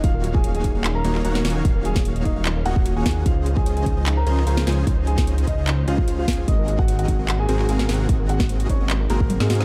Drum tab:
HH |x---x---x-x-x---x---x---x---ox--|x---x---x-x-x---x---x---x---ox--|x---x---x-x-x---x---x---x---ox--|x---x---x-x-x---x---x---x---ox--|
CP |----------------x-----x---------|----------------x---------------|----------------x-----x---------|----------------x---------------|
SD |--------------------------o-o---|------o---------------------o---|--------------------------o-o---|------o---------------------o---|
T1 |--------------------------------|--------------------------------|--------------------------------|--------------------------------|
BD |o-----o-----o-------------------|o-----o-----o---------o-----o---|o-----o-----o-------------------|o-----o-----o---------o-----o---|

HH |x---x---x-x-x---x---x---x---ox--|x---x---x-x-x---x---x---x---ox--|
CP |----------------x-----x---------|----------------x---------------|
SD |--------------------------o-o---|------o-------------------o-o-o-|
T1 |--------------------------------|------------------------o-------|
BD |o-----o-----o-------------------|o-----o-----o---------o---------|